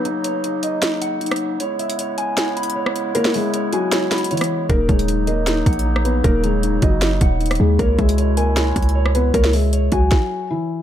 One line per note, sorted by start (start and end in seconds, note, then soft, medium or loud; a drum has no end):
0.00 1.57 C#3 medium
0.00 1.57 F#3 medium
0.00 1.57 A#3 medium
0.00 1.57 D#4 medium
0.00 0.44 F#5 medium
0.05 0.43 D#4 medium
0.05 closed hi-hat medium
0.24 1.21 C#5 medium
0.24 closed hi-hat medium
0.44 0.81 D#4 medium
0.44 closed hi-hat medium
0.63 1.60 D#5 medium
0.63 closed hi-hat medium
0.82 1.20 D#4 medium
0.82 snare loud
0.82 closed hi-hat medium
1.02 1.60 F#5 medium
1.02 closed hi-hat medium
1.21 1.60 D#4 medium
1.21 closed hi-hat soft
1.26 closed hi-hat soft
1.31 cross-stick loud
1.31 closed hi-hat medium
1.36 closed hi-hat medium
1.60 4.66 C#3 medium
1.60 4.66 G#3 medium
1.60 4.66 B3 medium
1.60 4.66 E4 medium
1.60 1.97 C#5 loud
1.60 closed hi-hat medium
1.79 2.76 E5 medium
1.79 closed hi-hat soft
1.90 closed hi-hat medium
1.98 2.36 C#5 medium
1.98 closed hi-hat medium
2.18 2.56 G#5 loud
2.18 closed hi-hat medium
2.37 2.75 C#5 medium
2.37 snare loud
2.37 closed hi-hat medium
2.57 3.54 B5 medium
2.57 closed hi-hat medium
2.63 closed hi-hat medium
2.70 closed hi-hat medium
2.76 3.14 C#5 medium
2.86 cross-stick loud
2.96 closed hi-hat medium
3.15 3.33 A#3 medium
3.15 3.32 A#4 loud
3.15 3.53 C#5 medium
3.15 closed hi-hat medium
3.25 snare loud
3.34 3.71 G#3 medium
3.34 3.71 G#4 medium
3.34 4.31 E5 medium
3.34 open hi-hat medium
3.54 3.91 C#5 medium
3.54 closed hi-hat medium
3.73 4.28 F#3 medium
3.73 4.27 F#4 medium
3.73 4.11 G#5 medium
3.73 closed hi-hat medium
3.92 4.29 C#5 medium
3.92 snare loud
3.92 closed hi-hat medium
4.12 4.70 B5 medium
4.12 snare loud
4.12 closed hi-hat medium
4.18 closed hi-hat medium
4.24 closed hi-hat medium
4.31 4.68 E3 medium
4.31 4.67 E4 medium
4.31 4.69 C#5 medium
4.31 closed hi-hat medium
4.37 closed hi-hat medium
4.41 cross-stick loud
4.41 closed hi-hat medium
4.44 closed hi-hat medium
4.69 4.88 D#1 loud
4.69 10.07 C#3 medium
4.69 7.62 F#3 medium
4.69 7.62 A#3 medium
4.69 4.87 A#3 medium
4.69 7.62 D#4 medium
4.69 5.07 D#4 medium
4.69 4.87 A#4 loud
4.69 kick loud
4.69 closed hi-hat medium
4.89 5.63 D#1 loud
4.89 5.26 G#3 medium
4.89 5.25 G#4 medium
4.89 5.86 C#5 medium
4.89 kick loud
4.89 closed hi-hat soft
4.99 closed hi-hat medium
5.08 5.46 D#4 medium
5.08 closed hi-hat medium
5.27 6.01 A#3 medium
5.27 6.01 A#4 medium
5.27 6.24 D#5 medium
5.27 closed hi-hat medium
5.47 5.84 D#4 medium
5.47 snare loud
5.47 closed hi-hat medium
5.66 6.22 A#1 loud
5.66 6.63 F#5 medium
5.66 kick loud
5.66 closed hi-hat medium
5.73 closed hi-hat medium
5.79 closed hi-hat medium
5.86 6.23 D#4 medium
5.96 cross-stick loud
6.05 6.23 B3 medium
6.05 6.22 B4 medium
6.05 closed hi-hat medium
6.24 6.80 D#1 loud
6.24 6.42 A#3 medium
6.24 6.62 D#4 medium
6.24 6.42 A#4 loud
6.24 kick loud
6.24 closed hi-hat medium
6.43 6.81 G#3 medium
6.43 6.80 G#4 medium
6.43 7.40 C#5 medium
6.43 closed hi-hat medium
6.63 7.00 D#4 medium
6.63 closed hi-hat medium
6.82 7.20 F#1 loud
6.82 7.56 F#3 medium
6.82 7.56 F#4 medium
6.82 7.80 D#5 loud
6.82 kick medium
6.82 closed hi-hat medium
7.02 7.39 D#4 medium
7.02 snare loud
7.02 closed hi-hat medium
7.21 7.58 D#1 loud
7.21 7.79 F#5 medium
7.21 kick loud
7.21 closed hi-hat medium
7.40 7.79 D#4 medium
7.40 closed hi-hat soft
7.46 closed hi-hat soft
7.51 cross-stick loud
7.51 closed hi-hat medium
7.55 closed hi-hat medium
7.60 7.78 D#2 loud
7.60 7.78 G#3 medium
7.60 7.77 G#4 medium
7.79 7.98 C#2 loud
7.79 10.09 B2 medium
7.79 10.09 G#3 medium
7.79 7.97 A#3 medium
7.79 10.09 E4 medium
7.79 7.96 A#4 loud
7.79 8.17 C#5 loud
7.79 kick loud
7.79 closed hi-hat medium
7.99 8.73 C#2 loud
7.99 8.35 G#3 medium
7.99 8.35 G#4 medium
7.99 8.96 E5 medium
7.99 kick loud
7.99 closed hi-hat soft
8.09 closed hi-hat medium
8.18 8.56 C#5 medium
8.18 closed hi-hat medium
8.37 9.11 A#3 medium
8.37 9.11 A#4 medium
8.37 9.34 G#5 loud
8.37 closed hi-hat medium
8.57 8.94 C#5 medium
8.57 snare loud
8.57 closed hi-hat medium
8.76 9.32 C#2 loud
8.76 kick loud
8.76 closed hi-hat medium
8.82 closed hi-hat medium
8.89 closed hi-hat medium
8.95 9.33 C#5 medium
9.06 cross-stick loud
9.15 9.33 B3 medium
9.15 9.32 B4 medium
9.15 closed hi-hat medium
9.34 9.90 C#2 loud
9.34 9.52 A#3 medium
9.34 9.51 A#4 loud
9.34 9.72 C#5 medium
9.34 kick loud
9.34 closed hi-hat medium
9.44 snare loud
9.53 9.90 G#3 medium
9.53 9.90 G#4 medium
9.53 10.50 E5 medium
9.53 open hi-hat medium
9.73 10.70 C#5 medium
9.73 closed hi-hat medium
9.92 10.11 C#2 loud
9.92 10.47 F#3 medium
9.92 10.47 F#4 medium
9.92 10.82 G#5 medium
9.92 kick medium
9.92 closed hi-hat medium
10.11 kick loud
10.11 snare loud
10.50 10.82 E3 medium
10.50 10.82 E4 medium